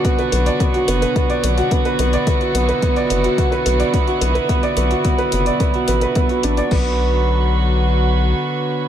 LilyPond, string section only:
\new Staff \with { instrumentName = "String section" } { \time 4/4 \key b \minor \tempo 4 = 108 << { <b, d fis fis'>1~ | <b, d fis fis'>1~ | <b, d fis fis'>1 | <d fis b fis' b'>1 | } \\ { d'1 | e'1~ | e'1 | r1 | } >> }